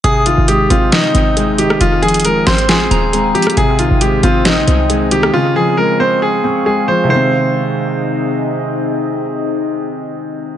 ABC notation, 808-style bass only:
X:1
M:4/4
L:1/16
Q:1/4=136
K:Ab
V:1 name="808-style bass" clef=bass
A,,,3 A,,,3 A,,,2 z2 A,,,6 | F,,,6 A,,,4 E,,,4 z2 | A,,,2 B,,, A,,,3 A,,,4 C,,6 | z16 |
z16 | z16 |]